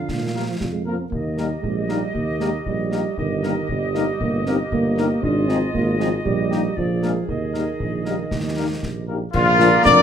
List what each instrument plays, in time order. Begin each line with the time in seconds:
Already playing: euphonium D3, woodwind section F4 F5
0.09 tuba A#2, concert bass drum, snare
0.22 euphonium D#3
0.34 french horn section F3 A#3 F4, euphonium G3, trumpet section A#4
0.48 euphonium F3
0.60 tuba F2, euphonium G3, concert bass drum, snare
0.72 euphonium G#3
0.86 french horn section F3 A#3 F4, euphonium A#3, trumpet section A#4
0.99 euphonium C4
1.10 tuba D#2, euphonium A#3, woodwind section G4 D#5, concert bass drum
1.38 french horn section G3 A#3 D#4, trumpet section A#4, snare
1.61 tuba A#1, euphonium G#3, concert bass drum
1.87 euphonium G3, french horn section G3 A#3 D#4, trumpet section A#4, snare
2.14 tuba D#2, euphonium A#3, concert bass drum
2.40 french horn section G3 A#3 D#4, euphonium G#3, trumpet section A#4, snare
2.66 tuba A#1, euphonium G3, concert bass drum
2.92 french horn section G3 A#3 D#4, trumpet section A#4, snare
3.17 tuba G1, euphonium D#3, woodwind section G4 D#5, concert bass drum
3.43 french horn section G3 A#3 D#4, trumpet section A#4, snare
3.68 tuba G1, euphonium G3, concert bass drum
3.95 french horn section G3 A#3 D#4, trumpet section A#4, snare
4.20 tuba G1, euphonium A#3, concert bass drum
4.46 french horn section G3 A#3 D#4, euphonium C4, trumpet section A#4, snare
4.70 tuba G1, euphonium A#3, concert bass drum
4.97 french horn section G3 A#3 D#4, trumpet section A#4, snare
5.22 tuba G#1, euphonium D4, woodwind section F4 D#5, concert bass drum
5.48 french horn section F3 C4 D#4, euphonium C4, trumpet section G#4, snare
5.74 tuba G#1, euphonium A#3, concert bass drum
5.99 french horn section F3 C4 D#4, euphonium G#3, trumpet section G#4, snare
6.24 tuba A#1, euphonium G3, woodwind section G4, concert bass drum
6.51 french horn section G3 A#3 D#4, trumpet section G4, snare
6.76 tuba A#1, euphonium F3, woodwind section G#4 D5, concert bass drum
7.03 french horn section G#3 A#3 D4, trumpet section A#4, snare
7.28 tuba D#2, euphonium D#3, woodwind section D#5, concert bass drum
7.54 french horn section G3 A#3 D#4, trumpet section A#4, snare
7.80 tuba A#1, concert bass drum
8.05 french horn section G3 A#3 D#4, trumpet section A#4, snare
8.31 tuba D#2, woodwind section G4, concert bass drum, snare
8.56 french horn section G3 A#3 D#4, trumpet section A#4
8.82 tuba A#1, concert bass drum, snare
9.07 french horn section G3 A#3 D#4, trumpet section A#4
9.32 tuba A#1, trombone section D3 A#3, trumpet section F4, woodwind section A#4 D5, concert bass drum, crash
9.59 french horn section F3 D4 F4, snare
9.83 tuba F2, euphonium D4, trumpet section D5, concert bass drum, snare